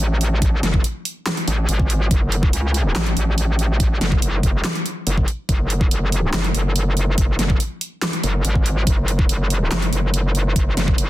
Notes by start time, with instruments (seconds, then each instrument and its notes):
Already playing: wobble bass A1
0.21 closed hi-hat
0.42 kick, closed hi-hat
0.63 wobble bass F#1, snare, closed hi-hat
0.74 kick
0.84 closed hi-hat
1.05 closed hi-hat
1.26 snare, clap, closed hi-hat
1.37 closed hi-hat
1.48 wobble bass A1, closed hi-hat
1.69 wobble bass G#1, closed hi-hat
1.79 kick
1.90 closed hi-hat
2.11 wobble bass F#1, kick, closed hi-hat
2.32 closed hi-hat
2.43 kick
2.53 wobble bass C#2, closed hi-hat
2.74 closed hi-hat
2.95 wobble bass A1, snare, clap, closed hi-hat
3.06 closed hi-hat
3.17 wobble bass A1, closed hi-hat
3.38 closed hi-hat
3.59 closed hi-hat
3.80 kick, closed hi-hat
4.01 wobble bass F#1, snare, closed hi-hat
4.12 kick
4.22 wobble bass F#1, closed hi-hat
4.43 wobble bass F#1, kick, closed hi-hat
4.64 snare, clap, closed hi-hat
4.75 closed hi-hat
4.86 closed hi-hat
5.07 wobble bass F#1, closed hi-hat
5.17 kick
5.28 closed hi-hat
5.49 wobble bass F#1, kick, closed hi-hat
5.70 closed hi-hat
5.81 kick
5.91 wobble bass F#1, closed hi-hat
6.12 closed hi-hat
6.33 wobble bass F#1, snare, clap, closed hi-hat
6.44 closed hi-hat
6.55 wobble bass F#1, closed hi-hat
6.76 closed hi-hat
6.97 closed hi-hat
7.18 kick, closed hi-hat
7.39 wobble bass F#1, snare, closed hi-hat
7.50 kick
7.60 closed hi-hat
7.81 closed hi-hat
8.02 snare, clap, closed hi-hat
8.13 closed hi-hat
8.23 wobble bass F#1, closed hi-hat
8.45 wobble bass G#1, closed hi-hat
8.55 kick
8.66 closed hi-hat
8.87 wobble bass F#1, kick, closed hi-hat
9.08 closed hi-hat
9.19 kick
9.29 wobble bass F#1, closed hi-hat
9.50 closed hi-hat
9.71 wobble bass F#1, snare, clap, closed hi-hat
9.82 closed hi-hat
9.93 wobble bass F#1, closed hi-hat
10.14 closed hi-hat
10.35 closed hi-hat
10.56 kick, closed hi-hat
10.77 wobble bass F#1, snare, closed hi-hat
10.88 kick
10.98 wobble bass F#1, closed hi-hat